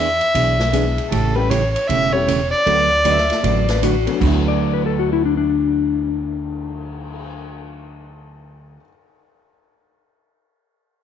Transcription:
Already playing: upright bass E2, fiddle E5
0.21 ride
0.34 upright bass B1, hollow-body jazz guitar E3 B3 D4 G#4, kick, ride
0.59 snare
0.73 hollow-body jazz guitar E3 B3 D4 G#4, honky-tonk piano G#3 B3 D4 E4 G#4, kick, hi-hat pedal, ride
0.98 ride
1.10 upright bass A1, hollow-body jazz guitar C#3 E3 A3 C#4 G4, fiddle A4, kick, ride
1.35 honky-tonk piano G3 A3 C#4 E4 G4, fiddle B4
1.50 hollow-body jazz guitar C#3 E3 A3 C#4 G4, fiddle C#5, kick, hi-hat pedal, ride
1.73 fiddle C#5, ride
1.87 upright bass E1, hollow-body jazz guitar C#3 E3 A3 C#4 G4, fiddle E5, kick, ride
2.12 honky-tonk piano G3 A3 C#4 E4 G4, fiddle C#5
2.27 hollow-body jazz guitar C#3 E3 A3 C#4 G4, kick, hi-hat pedal, ride
2.51 fiddle D5
2.66 upright bass D2, hollow-body jazz guitar D3 F#3 A3 D4 F#4 B4, honky-tonk piano F#3 A3 B3 D4 F#4, kick, ride
3.05 hollow-body jazz guitar D3 F#3 A3 D4 F#4 B4, electric slide guitar E5, kick, hi-hat pedal, ride
3.18 snare
3.30 snare, ride
3.43 upright bass A1, hollow-body jazz guitar D3 F#3 A3 D4 F#4 B4, electric slide guitar D5, kick, ride
3.69 electric slide guitar B4, snare, ride
3.82 hollow-body jazz guitar D3 F#3 A3 D4 F#4 B4, electric slide guitar F#4, kick, hi-hat pedal, ride
4.06 honky-tonk piano D2 F#3 A3 B3 D4 F#4, ride
4.15 honky-tonk piano D3
4.20 upright bass D2, hollow-body jazz guitar D3 F#3 A3 D4 F#4 B4, honky-tonk piano B3, kick, crash
4.27 honky-tonk piano E4
4.34 honky-tonk piano F#4
4.46 electric slide guitar D5, cymbal swell
4.73 electric slide guitar B4
4.86 electric slide guitar A4
4.99 electric slide guitar F#4
5.13 electric slide guitar E4
5.25 electric slide guitar D4
5.37 electric slide guitar D4

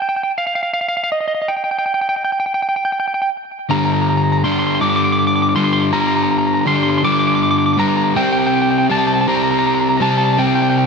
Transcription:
0.02 lead electric guitar G5
0.09 lead electric guitar G5
0.16 lead electric guitar G5
0.23 lead electric guitar G5
0.38 lead electric guitar F5
0.47 lead electric guitar F5
0.55 lead electric guitar F5
0.63 lead electric guitar F5
0.73 lead electric guitar F5
0.81 lead electric guitar F5
0.88 lead electric guitar F5
0.97 lead electric guitar F5
1.04 lead electric guitar F5
1.12 lead electric guitar D#5
1.21 lead electric guitar D#5
1.28 lead electric guitar D#5
1.42 lead electric guitar D#5
1.48 lead electric guitar G5
1.57 lead electric guitar G5
1.64 lead electric guitar G5
1.71 lead electric guitar G5
1.79 lead electric guitar G5
1.86 lead electric guitar G5
1.94 lead electric guitar G5
2.01 lead electric guitar G5
2.09 lead electric guitar G5
2.16 lead electric guitar G5
2.24 lead electric guitar G5
2.32 lead electric guitar G5
2.40 lead electric guitar G5
2.46 lead electric guitar G5
2.54 lead electric guitar G5
2.62 lead electric guitar G5
2.69 lead electric guitar G5
2.76 lead electric guitar G5
2.85 lead electric guitar G5
2.92 lead electric guitar G5
3.00 lead electric guitar G5
3.08 lead electric guitar G5
3.14 lead electric guitar G5
3.22 lead electric guitar G5
3.69 overdriven electric guitar G2 D3 G3, lead electric guitar A#5
3.78 lead electric guitar A#5
3.85 lead electric guitar A#5
3.93 lead electric guitar A#5
4.02 lead electric guitar A#5
4.09 lead electric guitar A#5
4.17 lead electric guitar A#5
4.24 lead electric guitar A#5
4.32 lead electric guitar A#5
4.39 lead electric guitar A#5
4.44 overdriven electric guitar G2 D3 G3, lead electric guitar C6
4.52 lead electric guitar C6
4.59 lead electric guitar C6
4.67 lead electric guitar C6
4.75 lead electric guitar C6
4.81 overdriven electric guitar G2 D3 G3, lead electric guitar D6
4.90 lead electric guitar D6
4.96 lead electric guitar D6
5.04 lead electric guitar D6
5.12 lead electric guitar D6
5.19 lead electric guitar D6
5.27 lead electric guitar D6
5.36 lead electric guitar D6
5.42 lead electric guitar D6
5.49 lead electric guitar D6
5.55 overdriven electric guitar G2 D3 G3, lead electric guitar C6
5.64 lead electric guitar C6
5.73 lead electric guitar C6
5.81 lead electric guitar C6
5.92 overdriven electric guitar G2 D3 G3, lead electric guitar A#5
6.01 lead electric guitar A#5
6.07 lead electric guitar A#5
6.16 lead electric guitar A#5
6.23 lead electric guitar A#5
6.31 lead electric guitar A#5
6.38 lead electric guitar A#5
6.47 lead electric guitar A#5
6.54 lead electric guitar A#5
6.61 lead electric guitar A#5
6.66 overdriven electric guitar G2 D3 G3, lead electric guitar C6
6.75 lead electric guitar C6
6.83 lead electric guitar C6
6.90 lead electric guitar C6
6.98 lead electric guitar C6
7.03 overdriven electric guitar G2 D3 G3, lead electric guitar D6
7.12 lead electric guitar D6
7.19 lead electric guitar D6
7.27 lead electric guitar D6
7.35 lead electric guitar D6
7.43 lead electric guitar D6
7.51 lead electric guitar D6
7.58 lead electric guitar D6
7.66 lead electric guitar D6
7.73 lead electric guitar D6
7.77 overdriven electric guitar G2 D3 G3, lead electric guitar A#5
7.88 lead electric guitar A#5
7.97 lead electric guitar A#5
8.04 lead electric guitar A#5
8.15 overdriven electric guitar C3 G3 C4, lead electric guitar G5
8.23 lead electric guitar G5
8.32 lead electric guitar G5
8.39 lead electric guitar G5
8.47 lead electric guitar G5
8.56 lead electric guitar G5
8.62 lead electric guitar G5
8.71 lead electric guitar G5
8.78 lead electric guitar G5
8.90 overdriven electric guitar C3 G3 C4, lead electric guitar A5
8.98 lead electric guitar A5
9.07 lead electric guitar A5
9.14 lead electric guitar A5
9.21 lead electric guitar A5
9.27 overdriven electric guitar C3 G3 C4, lead electric guitar A#5
9.36 lead electric guitar A#5
9.43 lead electric guitar A#5
9.51 lead electric guitar A#5
9.59 lead electric guitar A#5
9.67 lead electric guitar A#5
9.75 lead electric guitar A#5
9.81 lead electric guitar A#5
9.89 lead electric guitar A#5
9.97 overdriven electric guitar C3 G3, lead electric guitar A#5
10.02 overdriven electric guitar C4, lead electric guitar A5
10.11 lead electric guitar A5
10.18 lead electric guitar A5
10.25 lead electric guitar A5
10.33 lead electric guitar A5
10.38 overdriven electric guitar C3 G3 C4, lead electric guitar G5
10.47 lead electric guitar G5
10.55 lead electric guitar G5
10.62 lead electric guitar G5
10.70 lead electric guitar G5
10.78 lead electric guitar G5

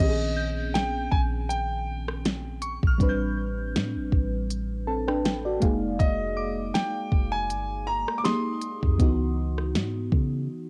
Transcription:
Already playing: fm electric piano D#3 B3
0.00 808-style bass A#1, fm electric piano C4 C#4 G4, grand piano D#5, kick, closed hi-hat
0.09 fm electric piano G#4
0.37 synth bell G6
0.74 grand piano G5, snare, closed hi-hat
1.11 808-style bass A#1, grand piano G#5, kick
1.49 grand piano G5, closed hi-hat
2.08 cross-stick
2.25 snare, closed hi-hat
2.62 synth bell C#6, closed hi-hat
2.83 808-style bass A#1, synth bell F6, kick
2.98 808-style bass A1, fm electric piano G3 C4 D4, kick, closed hi-hat
3.02 fm electric piano B4
3.09 synth bell G6
3.75 808-style bass A2, snare, closed hi-hat
3.95 808-style bass A1
4.12 808-style bass A1, kick
4.50 closed hi-hat
4.87 fm electric piano C4 A4 A5
5.08 fm electric piano D4 B4 G5, cross-stick
5.25 fm electric piano G5, snare, closed hi-hat
5.45 fm electric piano F#4 D5
5.60 808-style bass F1, fm electric piano G#3 A#3 D#4 F5, kick, closed hi-hat
5.65 fm electric piano G#4
5.99 808-style bass F1, grand piano D#5, kick, closed hi-hat
6.37 synth bell D6
6.74 grand piano G5, snare, closed hi-hat
7.12 808-style bass F1, kick
7.32 grand piano G#5
7.50 808-style bass G1, closed hi-hat
7.87 grand piano A#5
8.08 cross-stick
8.18 grand piano D6
8.24 fm electric piano A#3 D#4 G4 G#4, grand piano C6, synth bell D#6, snare, closed hi-hat
8.61 closed hi-hat
8.83 808-style bass F2, kick
8.98 808-style bass C#2, fm electric piano E3 B3 D#4, kick, closed hi-hat
9.02 fm electric piano F#4
9.58 cross-stick
9.75 808-style bass G#2, snare, closed hi-hat
10.12 808-style bass C#3, kick

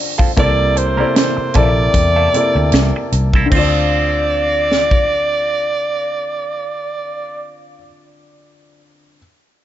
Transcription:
Already playing: grand piano D3 C4 F4 D5, vibraphone C5 D5
0.18 clean electric guitar C4 F4 A4, kick
0.37 fingered electric bass C2, grand piano C3 A#3 E4 A4 D5, clean electric guitar A#3 E4 A4, alto saxophone D5, kick, closed hi-hat
0.76 alto saxophone C5, muted clean electric guitar stroke, closed hi-hat
0.97 grand piano C3 A#3 E4 A4 D5, clean electric guitar A#3 E4 A#4
1.15 alto saxophone C5, muted clean electric guitar stroke, snare, closed hi-hat
1.37 muted clean electric guitar stroke, muted fingered electric bass stroke
1.54 fingered electric bass A#1, grand piano C3 A#3 E4 A4 D5, clean electric guitar A#3 E4 A4, alto saxophone D5, vibraphone E5, kick, closed hi-hat
1.76 muted clean electric guitar stroke
1.83 vibraphone G5
1.94 fingered electric bass E2, muted clean electric guitar stroke, kick, closed hi-hat
2.07 vibraphone A5
2.16 clean electric guitar A#3 E4 A4
2.34 grand piano C3 A#3 E4 A4 D5, muted clean electric guitar stroke, closed hi-hat
2.55 fingered electric bass D2, muted clean electric guitar stroke
2.72 fingered electric bass C2, muted clean electric guitar stroke, snare, closed hi-hat
2.96 muted clean electric guitar stroke
3.12 fingered electric bass C2, closed hi-hat
3.34 clean electric guitar A#3 E4 A4, kick
3.46 grand piano D3, vibraphone F5
3.50 fingered electric bass D2, grand piano C4, clean electric guitar C4, alto saxophone D5, kick, crash
3.54 grand piano F4, clean electric guitar F4 A4
3.59 grand piano D5
4.72 snare
4.91 kick

